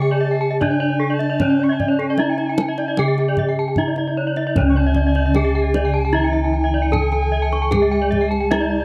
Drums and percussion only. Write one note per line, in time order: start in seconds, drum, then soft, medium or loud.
0.61 kendang low soft
1.20 kendang slap soft
1.40 kendang high soft
1.40 kendang low soft
1.80 kendang low soft
1.99 kendang slap soft
2.17 kendang high soft
2.38 kendang slap soft
2.58 kendang high soft
2.78 kendang slap soft
2.97 kendang high soft
3.18 kendang slap soft
3.37 kendang low soft
3.76 kendang low soft
3.96 kendang slap soft
4.36 kendang slap soft
4.56 kendang high soft
4.56 kendang low soft
4.94 kendang low soft
5.15 kendang slap soft
5.34 kendang high soft
5.74 kendang high soft
6.93 kendang low soft
7.12 kendang slap soft
7.52 kendang slap soft
7.72 kendang high soft
7.72 kendang low soft
8.12 kendang low soft
8.32 kendang slap soft
8.51 kendang high soft